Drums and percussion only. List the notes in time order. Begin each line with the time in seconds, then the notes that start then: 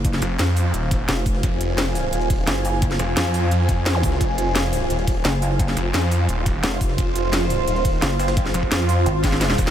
0.05 kick, closed hi-hat
0.13 snare, closed hi-hat
0.22 snare, closed hi-hat
0.39 snare, closed hi-hat
0.57 closed hi-hat, open hi-hat
0.74 closed hi-hat
0.91 kick, snare, closed hi-hat
1.09 snare, closed hi-hat
1.26 kick, closed hi-hat, open hi-hat
1.35 snare
1.43 kick, closed hi-hat
1.61 closed hi-hat
1.78 snare, closed hi-hat
1.95 snare, closed hi-hat, open hi-hat
2.13 closed hi-hat
2.21 closed hi-hat
2.30 kick, closed hi-hat, open hi-hat
2.47 snare, closed hi-hat
2.65 closed hi-hat, open hi-hat
2.73 snare
2.82 kick, closed hi-hat
2.91 snare, closed hi-hat
2.99 snare, closed hi-hat
3.17 snare, closed hi-hat
3.34 closed hi-hat, open hi-hat
3.51 closed hi-hat
3.69 kick, snare, closed hi-hat
3.86 snare, closed hi-hat
4.03 kick, closed hi-hat, open hi-hat
4.12 snare
4.21 kick, closed hi-hat
4.38 closed hi-hat
4.55 snare, closed hi-hat
4.73 snare, closed hi-hat, open hi-hat
4.90 closed hi-hat
4.99 closed hi-hat
5.07 kick, closed hi-hat, open hi-hat
5.25 snare, closed hi-hat
5.42 closed hi-hat, open hi-hat
5.51 snare
5.59 kick, closed hi-hat
5.68 snare, closed hi-hat
5.77 snare, closed hi-hat
5.94 snare, closed hi-hat
6.11 closed hi-hat, open hi-hat
6.29 closed hi-hat
6.46 kick, snare, closed hi-hat
6.63 snare, closed hi-hat
6.81 kick, closed hi-hat, open hi-hat
6.89 snare
6.98 kick, closed hi-hat
7.15 closed hi-hat
7.33 snare, closed hi-hat
7.50 snare, closed hi-hat, open hi-hat
7.67 closed hi-hat
7.76 closed hi-hat
7.85 kick, closed hi-hat, open hi-hat
8.02 snare, closed hi-hat
8.19 snare, closed hi-hat, open hi-hat
8.28 snare, closed hi-hat
8.37 kick, snare, closed hi-hat
8.46 snare
8.54 snare, closed hi-hat
8.63 kick
8.71 snare, closed hi-hat
8.89 snare, closed hi-hat, open hi-hat
9.06 closed hi-hat
9.23 kick, snare, closed hi-hat
9.32 snare
9.41 snare, closed hi-hat
9.50 snare
9.58 kick, snare, closed hi-hat, open hi-hat
9.67 snare